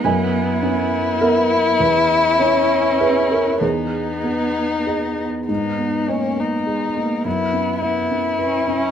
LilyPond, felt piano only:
\new Staff \with { instrumentName = "Felt piano" } { \time 3/4 \key gis \minor \tempo 4 = 102 << { gis''2 ais'4 | b'4 cis''4 b'8 ais'8 | gis'2~ gis'8 r8 | r2. |
r2. | } \\ { fis,4 cis'4 <b e''>4 | e,4 cis'4 <gis' e''>4 | e,4 b4 <gis' dis''>4 | gis,8 b8 dis''8 b8 gis'8 b8 |
fis,8 cis'8 e''8 cis'8 b'8 cis'8 | } >> }